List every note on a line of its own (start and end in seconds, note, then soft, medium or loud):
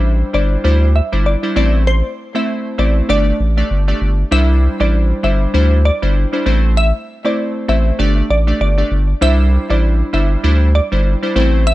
0.00 0.23 A1 medium
0.00 0.30 G3 medium
0.00 0.30 D4 medium
0.00 0.31 E4 medium
0.00 0.31 C5 medium
0.33 0.57 G1 medium
0.33 0.62 G3 medium
0.33 0.62 D4 medium
0.33 0.62 E4 medium
0.33 0.62 C5 medium
0.33 0.49 D5 medium
0.64 1.01 D2 loud
0.64 0.88 G3 medium
0.64 0.88 D4 medium
0.64 0.88 E4 medium
0.64 0.88 C5 loud
0.96 1.10 E5 medium
1.12 1.36 G1 medium
1.12 1.34 G3 medium
1.12 1.34 D4 medium
1.12 1.34 E4 medium
1.12 1.34 C5 medium
1.26 1.41 D5 medium
1.43 1.64 G3 medium
1.43 1.64 D4 medium
1.43 1.55 E4 medium
1.43 1.55 C5 medium
1.56 2.02 A1 loud
1.56 1.84 A3 medium
1.56 1.85 C4 medium
1.56 1.85 E4 medium
1.56 1.85 C5 loud
1.56 1.72 D5 medium
1.87 2.13 C5 loud
2.35 2.75 A3 medium
2.35 2.75 C4 medium
2.35 2.75 E4 medium
2.35 2.76 C5 medium
2.35 2.46 E5 medium
2.78 3.02 A1 loud
2.78 3.07 A3 medium
2.78 3.07 C4 medium
2.78 3.07 E4 medium
2.78 3.07 C5 medium
2.78 2.94 D5 medium
3.09 3.32 G1 loud
3.09 3.33 A3 medium
3.09 3.33 D4 medium
3.09 3.33 G4 medium
3.09 3.33 D5 loud
3.09 3.55 D5 loud
3.40 3.63 A1 medium
3.57 3.78 A3 medium
3.57 3.79 D4 medium
3.57 3.79 G4 medium
3.57 3.79 D5 medium
3.70 3.93 G1 medium
3.88 4.09 A3 medium
3.88 4.09 D4 medium
3.88 4.09 G4 medium
3.88 4.09 D5 medium
4.01 4.24 G1 medium
4.31 4.68 C2 loud
4.31 4.76 G3 loud
4.31 4.76 D4 medium
4.31 4.76 E4 medium
4.31 4.76 C5 loud
4.31 4.47 E5 loud
4.80 5.13 A1 medium
4.80 5.20 G3 medium
4.80 5.20 D4 medium
4.80 5.20 E4 medium
4.80 5.21 C5 medium
4.80 4.91 D5 medium
5.23 5.47 G1 medium
5.23 5.52 G3 medium
5.23 5.52 D4 medium
5.23 5.52 E4 medium
5.23 5.52 C5 medium
5.23 5.39 E5 medium
5.54 5.91 D2 loud
5.54 5.78 G3 medium
5.54 5.78 D4 medium
5.54 5.78 E4 medium
5.54 5.78 C5 loud
5.85 6.00 D5 medium
6.02 6.26 G1 loud
6.02 6.23 G3 medium
6.02 6.24 D4 medium
6.02 6.24 E4 medium
6.02 6.24 C5 medium
6.33 6.54 G3 medium
6.33 6.54 D4 medium
6.33 6.45 E4 medium
6.33 6.45 C5 medium
6.46 6.92 A1 loud
6.46 6.74 A3 medium
6.46 6.74 C4 medium
6.46 6.75 E4 medium
6.46 6.75 C5 loud
6.77 6.92 E5 loud
7.25 7.65 A3 medium
7.25 7.65 C4 medium
7.25 7.65 E4 medium
7.25 7.65 C5 medium
7.25 7.36 D5 medium
7.68 7.92 A1 loud
7.68 7.97 A3 medium
7.68 7.97 C4 medium
7.68 7.97 E4 medium
7.68 7.97 C5 medium
7.68 7.84 E5 medium
7.99 8.22 G1 loud
7.99 8.23 A3 medium
7.99 8.23 D4 medium
7.99 8.23 G4 medium
7.99 8.23 D5 loud
8.30 8.53 A1 medium
8.30 8.45 D5 medium
8.47 8.68 A3 medium
8.47 8.68 D4 medium
8.47 8.69 G4 medium
8.47 8.69 D5 medium
8.60 8.83 G1 loud
8.60 9.06 D5 medium
8.78 8.99 A3 medium
8.78 8.99 D4 medium
8.78 8.99 G4 medium
8.78 8.99 D5 medium
8.91 9.14 G1 medium
9.21 9.58 C2 loud
9.21 9.65 G3 loud
9.21 9.65 D4 medium
9.21 9.66 E4 medium
9.21 9.66 C5 loud
9.21 9.37 E5 loud
9.70 10.03 A1 medium
9.70 10.10 G3 medium
9.70 10.10 D4 medium
9.70 10.10 E4 medium
9.70 10.10 C5 medium
9.70 9.81 D5 medium
10.13 10.36 G1 medium
10.13 10.42 G3 medium
10.13 10.42 D4 medium
10.13 10.42 E4 medium
10.13 10.42 C5 medium
10.13 10.29 E5 medium
10.43 10.80 D2 loud
10.43 10.67 G3 medium
10.43 10.68 D4 medium
10.43 10.68 E4 medium
10.43 10.68 C5 loud
10.75 10.90 D5 medium
10.92 11.15 G1 loud
10.92 11.13 G3 medium
10.92 11.13 D4 medium
10.92 11.13 E4 medium
10.92 11.13 C5 medium
11.23 11.44 G3 medium
11.23 11.44 D4 medium
11.23 11.35 E4 medium
11.23 11.35 C5 medium
11.36 11.74 A1 loud
11.36 11.64 A3 medium
11.36 11.64 C4 medium
11.36 11.64 E4 medium
11.36 11.64 C5 loud
11.67 11.74 E5 loud